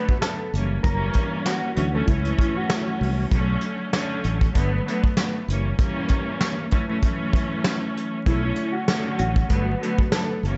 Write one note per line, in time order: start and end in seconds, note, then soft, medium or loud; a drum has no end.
0.00 0.19 D3 loud
0.00 0.19 F#3 medium
0.00 0.19 A3 medium
0.00 0.20 B3 loud
0.00 0.18 F#4 medium
0.09 kick medium
0.21 0.51 D3 medium
0.21 0.51 F#3 medium
0.21 0.52 A3 medium
0.21 0.52 B3 medium
0.21 0.50 A4 medium
0.21 snare loud
0.21 closed hi-hat medium
0.53 0.77 F#1 loud
0.53 0.80 E3 medium
0.53 0.81 G3 medium
0.53 0.82 A#3 medium
0.53 0.83 C#4 medium
0.53 closed hi-hat medium
0.82 1.08 F#1 loud
0.82 1.69 E3 loud
0.82 1.69 G3 loud
0.82 1.70 A#3 loud
0.82 1.70 C#4 loud
0.82 1.42 A#4 medium
0.82 kick loud
0.82 closed hi-hat medium
1.13 kick medium
1.13 closed hi-hat medium
1.46 1.92 F#4 medium
1.46 snare loud
1.46 closed hi-hat medium
1.75 2.01 D2 loud
1.75 1.90 E3 loud
1.75 1.91 F#3 medium
1.75 1.92 A3 medium
1.75 1.92 C#4 loud
1.75 closed hi-hat medium
1.91 2.06 E3 medium
1.91 2.06 F#3 medium
1.91 2.07 A3 medium
1.91 2.08 C#4 loud
1.91 2.07 A4 medium
2.06 2.32 C#2 loud
2.06 3.22 E3 loud
2.06 3.23 F#3 medium
2.06 3.23 A3 medium
2.06 3.23 C#4 loud
2.06 2.52 E4 medium
2.06 kick medium
2.06 closed hi-hat loud
2.25 closed hi-hat medium
2.39 kick loud
2.39 closed hi-hat medium
2.57 3.28 F#4 medium
2.69 snare loud
2.69 closed hi-hat medium
3.01 3.24 C2 medium
3.01 open hi-hat medium
3.31 3.55 B1 loud
3.31 3.89 D3 loud
3.31 3.89 F#3 medium
3.31 3.89 A3 medium
3.31 3.90 C#4 loud
3.31 kick loud
3.31 closed hi-hat medium
3.61 closed hi-hat medium
3.91 4.51 D3 loud
3.91 4.52 F#3 medium
3.91 4.53 A3 medium
3.91 4.55 C#4 loud
3.91 snare loud
3.91 closed hi-hat medium
4.24 4.48 A1 medium
4.24 closed hi-hat medium
4.41 kick loud
4.41 closed hi-hat medium
4.52 4.79 G1 loud
4.52 4.82 D3 medium
4.52 4.83 F#3 medium
4.52 4.83 A3 medium
4.52 4.84 B3 loud
4.52 kick medium
4.52 closed hi-hat loud
4.83 5.13 D3 loud
4.83 5.14 F#3 medium
4.83 5.14 A3 medium
4.83 5.15 B3 loud
4.88 closed hi-hat medium
5.04 kick loud
5.17 5.46 D3 medium
5.17 5.46 F#3 medium
5.17 5.46 A3 medium
5.17 5.47 B3 medium
5.17 snare loud
5.17 closed hi-hat medium
5.48 5.72 F#1 loud
5.48 5.76 E3 medium
5.48 5.76 G3 medium
5.48 5.77 A#3 medium
5.48 5.78 C#4 medium
5.48 closed hi-hat medium
5.77 6.64 E3 loud
5.77 6.64 G3 loud
5.77 6.65 A#3 loud
5.77 6.65 C#4 loud
5.77 kick loud
5.77 closed hi-hat medium
6.08 kick medium
6.08 closed hi-hat medium
6.41 snare loud
6.41 closed hi-hat medium
6.70 6.85 E3 loud
6.70 6.86 F#3 medium
6.70 6.87 A3 medium
6.70 6.87 C#4 loud
6.70 kick medium
6.70 closed hi-hat medium
6.86 7.00 E3 medium
6.86 7.01 F#3 medium
6.86 7.02 A3 medium
6.86 7.03 C#4 loud
7.02 8.17 E3 loud
7.02 8.17 F#3 medium
7.02 8.18 A3 medium
7.02 8.18 C#4 loud
7.02 kick medium
7.02 closed hi-hat loud
7.33 kick loud
7.33 closed hi-hat medium
7.64 snare loud
7.64 closed hi-hat medium
7.97 closed hi-hat medium
8.25 8.50 B1 loud
8.25 8.83 D3 medium
8.25 8.84 F#3 medium
8.25 8.84 A3 medium
8.25 8.84 C#4 loud
8.25 8.72 E4 loud
8.25 kick loud
8.25 closed hi-hat medium
8.56 closed hi-hat medium
8.72 9.15 F#4 medium
8.86 9.46 D3 loud
8.86 9.47 F#3 medium
8.86 9.48 A3 medium
8.86 9.50 C#4 loud
8.86 snare loud
8.86 closed hi-hat medium
9.18 9.43 A1 medium
9.18 10.08 F#4 medium
9.18 closed hi-hat medium
9.36 kick loud
9.36 closed hi-hat medium
9.47 9.74 G1 loud
9.47 9.77 D3 medium
9.47 9.78 F#3 medium
9.47 9.78 A3 medium
9.47 9.79 B3 loud
9.47 kick medium
9.47 closed hi-hat loud
9.78 10.08 D3 loud
9.78 10.09 F#3 medium
9.78 10.09 A3 medium
9.78 10.09 B3 loud
9.83 closed hi-hat medium
9.98 kick loud
10.12 10.40 D3 medium
10.12 10.41 F#3 medium
10.12 10.41 A3 medium
10.12 10.42 B3 medium
10.12 10.40 A4 medium
10.12 snare loud
10.12 closed hi-hat medium
10.43 10.57 F#1 medium
10.43 10.57 E3 medium
10.43 10.57 G3 medium
10.43 10.57 A#3 medium
10.43 10.57 C#4 medium
10.43 closed hi-hat medium